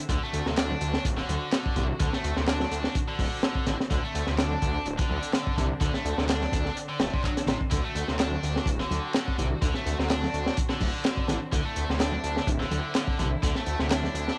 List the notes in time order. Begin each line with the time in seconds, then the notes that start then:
Already playing: D3 C4
0.09 D2 D3 F#4, kick, closed hi-hat
0.23 A3
0.33 D2, closed hi-hat
0.46 D2 C3, snare
0.57 D4, snare, clap, closed hi-hat
0.70 high conga
0.81 D2, closed hi-hat
0.94 snare
1.05 D1, kick, closed hi-hat
1.18 D3, snare
1.29 D2, closed hi-hat, high conga
1.52 D3, snare, clap, closed hi-hat
1.66 kick
1.76 C2 D3, kick, closed hi-hat, low conga
2.00 D2 D3, kick, closed hi-hat
2.13 A3, snare
2.24 D2, closed hi-hat
2.37 D2 C3, snare
2.48 D4, snare, clap, closed hi-hat
2.60 snare, high conga
2.71 D2, closed hi-hat
2.84 snare
2.95 kick, closed hi-hat
3.08 D3
3.19 D1, kick, open hi-hat, high conga
3.43 D3, snare, clap, closed hi-hat
3.55 kick
3.66 A1 D3, snare, closed hi-hat, low conga
3.80 snare
3.90 D2 D3 D4, kick, closed hi-hat
4.04 A3
4.15 D2, closed hi-hat
4.27 D2 C3, snare
4.38 D4, snare, clap, closed hi-hat
4.51 high conga
4.62 D2, kick, closed hi-hat
4.86 D1, closed hi-hat
4.98 D3, kick, closed hi-hat
5.10 D2, high conga
5.23 closed hi-hat
5.33 D3, snare, clap, closed hi-hat
5.47 kick
5.57 C2 D3, kick, closed hi-hat, low conga
5.81 D2 D3, kick, closed hi-hat
5.94 A3, snare
6.05 D2, closed hi-hat
6.17 D2 C3, snare
6.28 D4, snare, clap, closed hi-hat
6.41 snare, high conga
6.52 D2, kick, closed hi-hat, low conga
6.66 snare
6.76 closed hi-hat, swell
6.89 D3
7.00 D1 A3, snare, closed hi-hat, high conga
7.13 C3, kick
7.24 F#3, kick, clap
7.37 snare, closed hi-hat
7.47 A1 C3, snare, closed hi-hat, low conga
7.61 kick
7.71 D2 D3 F#4, kick, closed hi-hat
7.84 A3
7.95 D2, closed hi-hat
8.08 D2 C3, snare
8.19 D4, snare, clap, closed hi-hat
8.32 high conga
8.43 D2, closed hi-hat
8.56 snare
8.66 D1, kick, closed hi-hat
8.80 D3, snare
8.91 D2, closed hi-hat, high conga
9.14 D3, snare, clap, closed hi-hat
9.28 kick
9.38 C2 D3, kick, closed hi-hat, low conga
9.62 D2 D3, kick, closed hi-hat
9.74 A3, snare
9.86 D2, closed hi-hat
9.99 D2 C3, snare
10.10 D4, snare, clap, closed hi-hat
10.23 snare, high conga
10.34 D2, closed hi-hat
10.46 snare
10.57 kick, closed hi-hat
10.69 D3, snare
10.80 D1, kick, open hi-hat, high conga
11.04 D3, snare, clap, closed hi-hat
11.17 kick
11.28 A1 D3, snare, closed hi-hat, low conga
11.52 D2 D3 E4, kick, closed hi-hat
11.65 A3
11.76 D2, closed hi-hat
11.89 D2 C3, snare
12.00 D4, snare, clap, closed hi-hat
12.12 high conga
12.24 D2, closed hi-hat
12.37 snare
12.47 D1, kick, closed hi-hat
12.60 D3, snare
12.71 D2, closed hi-hat, high conga
12.95 D3, snare, clap, closed hi-hat
13.08 kick
13.19 C2 D3, kick, closed hi-hat, low conga
13.43 D2 D3, kick, closed hi-hat
13.55 A3, snare
13.66 D2, closed hi-hat
13.79 D2 C3, snare
13.90 D4, snare, clap, closed hi-hat
14.03 snare, high conga
14.14 D2, closed hi-hat
14.28 snare